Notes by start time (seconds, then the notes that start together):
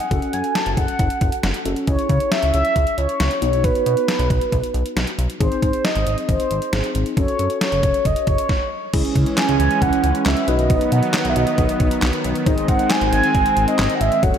Already playing: F#5
0.00 closed hi-hat
0.11 F#1 C#4 F#4 A4, kick, closed hi-hat
0.22 closed hi-hat
0.33 F#2 G#5, closed hi-hat
0.44 closed hi-hat
0.55 A5, snare, closed hi-hat
0.66 F#1, closed hi-hat
0.77 F#1 F#5, kick, closed hi-hat
0.88 closed hi-hat
0.99 F#1, kick, closed hi-hat
1.10 closed hi-hat
1.21 F#1, kick, closed hi-hat
1.32 closed hi-hat
1.43 F#1, snare, closed hi-hat
1.54 closed hi-hat
1.65 F#1 C#4 F#4 A4, closed hi-hat
1.76 closed hi-hat
1.87 C#2 C#4 E4 G#4 C#5, kick, closed hi-hat
1.99 closed hi-hat
2.09 C#3 C#5, kick, closed hi-hat
2.20 closed hi-hat
2.32 E5, snare, closed hi-hat
2.43 C#2, closed hi-hat
2.54 C#2 E5, closed hi-hat
2.65 closed hi-hat
2.76 C#2, kick, closed hi-hat
2.87 closed hi-hat
2.98 C#2 C#5, closed hi-hat
3.09 closed hi-hat
3.20 C#2, snare, closed hi-hat
3.31 closed hi-hat
3.42 B1 B3 D#4 F#4 C#5, closed hi-hat
3.53 closed hi-hat
3.64 B4, kick, closed hi-hat
3.75 closed hi-hat
3.86 B2, closed hi-hat
3.97 closed hi-hat
4.08 snare, closed hi-hat
4.19 B1, closed hi-hat
4.30 B1, kick, closed hi-hat
4.41 closed hi-hat
4.52 B1, kick, closed hi-hat
4.64 closed hi-hat
4.74 B1, closed hi-hat
4.86 closed hi-hat
4.96 B1, snare, closed hi-hat
5.07 closed hi-hat
5.18 B1, closed hi-hat
5.30 closed hi-hat
5.40 G#1 C4 D#4 G#4 C5, kick, closed hi-hat
5.52 closed hi-hat
5.62 G#2 C5, kick, closed hi-hat
5.73 closed hi-hat
5.85 D#5, snare, closed hi-hat
5.96 G#1, closed hi-hat
6.07 G#1 D#5, closed hi-hat
6.18 closed hi-hat
6.29 G#1 C5, kick, closed hi-hat
6.40 closed hi-hat
6.51 G#1, closed hi-hat
6.62 closed hi-hat
6.73 G#1 C4 D#4 G#4, snare, closed hi-hat
6.84 closed hi-hat
6.95 G#1, closed hi-hat
7.06 closed hi-hat
7.17 F#1 C#4 F#4 A4 C#5, kick, closed hi-hat
7.28 closed hi-hat
7.39 F#2, closed hi-hat
7.50 closed hi-hat
7.61 C#5, snare, closed hi-hat
7.72 F#1, closed hi-hat
7.83 F#1, kick, closed hi-hat
7.94 closed hi-hat
8.05 F#1 D#5, kick, closed hi-hat
8.16 closed hi-hat
8.27 F#1 C#5, kick, closed hi-hat
8.38 closed hi-hat
8.49 kick, snare
8.93 C#2 E3 G#3 C#4 E4 G#4, kick, closed hi-hat, crash
9.05 closed hi-hat
9.15 C#3, kick, closed hi-hat
9.26 closed hi-hat
9.38 G#5, snare, clap, closed hi-hat
9.49 C#2, closed hi-hat
9.60 C#2 G#5, closed hi-hat
9.71 closed hi-hat
9.82 C#2 F#5, kick, closed hi-hat
9.93 closed hi-hat
10.04 C#2, closed hi-hat
10.15 closed hi-hat
10.20 F#5
10.26 C#2 E5, snare, clap, closed hi-hat
10.37 closed hi-hat
10.48 B1 D#3 F#3 B3 D#4 F#4 B4 D#5, closed hi-hat
10.59 closed hi-hat
10.70 kick, closed hi-hat
10.81 closed hi-hat
10.92 B2 F#5, closed hi-hat
11.03 closed hi-hat
11.14 F#5, snare, clap, closed hi-hat
11.25 B1, closed hi-hat
11.29 E5
11.36 B1 D#5, closed hi-hat
11.47 closed hi-hat
11.58 B1, kick, closed hi-hat
11.69 closed hi-hat
11.80 B1, kick, closed hi-hat
11.91 closed hi-hat
12.02 B1, snare, clap, closed hi-hat
12.13 closed hi-hat
12.24 B1, closed hi-hat
12.35 closed hi-hat
12.46 G#1 G#3 C4 D#4 G#4 C5 D#5, kick, closed hi-hat
12.58 closed hi-hat
12.68 G#2 F#5, kick, closed hi-hat
12.79 closed hi-hat
12.90 G#5, snare, clap, closed hi-hat
13.01 G#1, closed hi-hat
13.12 G#1 G#5, closed hi-hat
13.24 closed hi-hat
13.35 G#1, kick, closed hi-hat
13.46 closed hi-hat
13.57 G#1, closed hi-hat
13.68 D#5, closed hi-hat
13.79 G#1, snare, clap, closed hi-hat
13.90 closed hi-hat
13.95 F#5
14.01 G#1 E5, closed hi-hat
14.12 closed hi-hat
14.23 F#1 F#3 A3 C#4 F#4 A4 C#5 F#5, kick, closed hi-hat
14.34 closed hi-hat